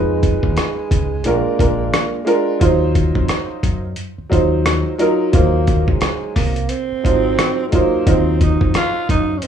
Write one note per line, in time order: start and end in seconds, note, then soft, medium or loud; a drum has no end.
0.00 0.39 F2 medium
0.00 1.10 G#3 medium
0.00 1.28 G#3 medium
0.00 1.07 D#4 medium
0.00 1.08 F4 medium
0.00 1.08 B4 medium
0.23 kick medium
0.23 closed hi-hat medium
0.43 0.55 D#2 medium
0.43 kick medium
0.57 cross-stick medium
0.57 closed hi-hat medium
0.91 1.22 C#2 medium
0.91 kick medium
0.91 closed hi-hat medium
1.24 1.44 A#1 loud
1.24 1.54 G#3 medium
1.24 2.28 A#3 medium
1.24 1.55 D4 medium
1.24 1.55 F4 medium
1.24 1.56 A#4 medium
1.24 closed hi-hat medium
1.46 muted fingered electric bass stroke medium
1.58 1.90 A#1 medium
1.58 2.18 G#3 medium
1.58 2.19 D4 medium
1.58 2.19 F4 medium
1.58 2.20 A#4 medium
1.58 kick medium
1.58 closed hi-hat medium
1.94 cross-stick loud
1.94 closed hi-hat medium
2.25 2.56 G#3 medium
2.25 2.57 D4 medium
2.25 2.57 F4 medium
2.25 2.57 A#4 loud
2.25 closed hi-hat medium
2.59 3.12 D#2 medium
2.59 3.79 F#3 medium
2.59 3.80 D#4 medium
2.59 3.80 F4 medium
2.59 3.81 C5 medium
2.59 kick loud
2.59 closed hi-hat medium
2.95 kick medium
2.95 closed hi-hat medium
3.15 3.28 F2 medium
3.15 kick medium
3.28 cross-stick medium
3.28 closed hi-hat medium
3.63 3.94 F#2 medium
3.63 kick medium
3.63 closed hi-hat medium
3.96 closed hi-hat medium
4.18 muted fingered electric bass stroke soft
4.30 4.83 D#2 medium
4.30 4.91 F#3 medium
4.30 4.91 D#4 medium
4.30 4.92 F4 medium
4.30 4.92 C5 medium
4.30 kick medium
4.30 closed hi-hat medium
4.66 cross-stick loud
4.66 closed hi-hat medium
4.98 5.29 F#3 medium
4.98 5.30 D#4 medium
4.98 5.30 F4 medium
4.98 5.31 A#4 medium
4.98 closed hi-hat medium
5.32 5.85 D#2 medium
5.32 6.52 F#3 medium
5.32 5.91 A#3 medium
5.32 6.52 D#4 medium
5.32 6.53 F4 medium
5.32 6.53 C5 medium
5.32 kick loud
5.32 closed hi-hat medium
5.67 kick medium
5.67 closed hi-hat medium
5.88 6.00 C#2 medium
5.88 6.36 G#3 medium
5.88 kick medium
6.01 cross-stick medium
6.01 closed hi-hat medium
6.35 6.67 C2 medium
6.35 6.71 A#3 medium
6.35 kick medium
6.35 cross-stick soft
6.35 open hi-hat medium
6.56 closed hi-hat soft
6.69 7.66 C4 medium
6.69 closed hi-hat medium
6.92 muted fingered electric bass stroke soft
7.03 7.35 G#1 medium
7.03 7.12 F3 medium
7.03 7.64 D#4 medium
7.03 7.65 F4 medium
7.03 7.65 C5 medium
7.03 kick medium
7.03 closed hi-hat medium
7.10 7.67 F#3 medium
7.39 cross-stick loud
7.39 closed hi-hat medium
7.68 8.02 F#3 medium
7.68 7.77 A3 soft
7.72 8.10 A#3 medium
7.72 8.03 D#4 medium
7.72 8.03 F4 medium
7.72 8.04 C5 medium
7.72 kick medium
7.72 closed hi-hat medium
8.06 8.57 D#2 medium
8.06 9.25 F#3 medium
8.06 8.42 C4 medium
8.06 9.26 D#4 medium
8.06 9.26 F4 medium
8.06 9.27 C5 medium
8.06 kick loud
8.06 closed hi-hat medium
8.41 8.74 D#4 medium
8.41 kick medium
8.41 closed hi-hat medium
8.61 8.74 F2 medium
8.61 kick medium
8.74 9.07 F4 loud
8.74 cross-stick medium
8.74 closed hi-hat medium
9.09 9.40 F#2 medium
9.09 9.39 D#4 medium
9.09 kick medium
9.09 closed hi-hat medium
9.37 9.45 C#4 medium
9.42 9.47 C4 medium
9.42 closed hi-hat medium